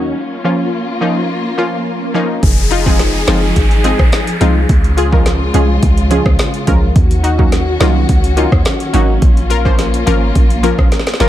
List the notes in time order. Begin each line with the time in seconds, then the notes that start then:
Already playing: D#2 D#3 C#4 F#4
0.16 A#3 F4, swell
0.44 F3 A#3 C#4 F4
1.01 F3 A#3 C#4 D#4
1.57 F3 A#3 C#4 F4
2.14 F3 A#3 C#4 D#4
2.43 F1 F3 D#4 G#4, kick, closed hi-hat, downlifter
2.58 closed hi-hat
2.71 D#4 F4, closed hi-hat
2.86 F3 G#3 C4 D#4 G#4, kick
2.99 snare, closed hi-hat
3.27 F#1 F3 G#3 C4 D#4 F4, snare, closed hi-hat
3.56 G#1, kick, closed hi-hat
3.71 closed hi-hat
3.84 F3 G#3 C4 D#4 G#4, closed hi-hat
3.99 A#1, kick, cross-stick
4.12 snare, closed hi-hat
4.27 closed hi-hat
4.40 C2 F3 G#3 C4 D#4 F4, closed hi-hat
4.69 C#2 C#3 G#3 F4, kick, closed hi-hat
4.84 closed hi-hat
4.97 F4 G#4, closed hi-hat
5.12 F3 G#3 C#4 F4 A#4, kick
5.26 snare, closed hi-hat
5.54 C2 F3 G#3 C#4 F4 G#4, closed hi-hat
5.83 C#2, kick, closed hi-hat
5.98 closed hi-hat
6.10 F3 G#3 C#4 F4 G#4, closed hi-hat
6.26 C#2, kick, cross-stick
6.39 snare, closed hi-hat
6.54 closed hi-hat
6.67 C#2 F3 G#3 C#4 F4 A#4, kick, closed hi-hat
6.96 D#2 D#3 C#4 F#4, kick, closed hi-hat
7.11 closed hi-hat
7.24 D#4 F#4, closed hi-hat
7.38 F#3 A#3 C#4 D#4 F#4, kick
7.52 snare, closed hi-hat
7.80 C2 F#3 A#3 C#4 D#4 F4, snare, closed hi-hat
8.09 C#2, kick, closed hi-hat
8.24 closed hi-hat
8.37 F#3 A#3 C#4 D#4 F4, closed hi-hat
8.52 D#2, kick, cross-stick
8.65 snare, closed hi-hat
8.80 closed hi-hat
8.93 G#1 F#3 A#3 C#4 D#4 F#4, closed hi-hat
9.22 A#1 A#3 F4, kick, closed hi-hat
9.37 closed hi-hat
9.50 F4 A#4, closed hi-hat
9.65 F3 A#3 C#4 F4 C5, kick
9.79 snare, closed hi-hat
9.94 closed hi-hat
10.06 G#1 F3 A#3 C#4 F4 A#4, closed hi-hat
10.35 A#1, kick, closed hi-hat
10.50 closed hi-hat
10.63 F3 A#3 C#4 F4 A#4, closed hi-hat
10.79 A#1, kick, cross-stick
10.92 snare, closed hi-hat
10.99 snare
11.07 snare, closed hi-hat
11.14 snare
11.20 F#1 F3 A#3 C#4 F4 A#4, snare, closed hi-hat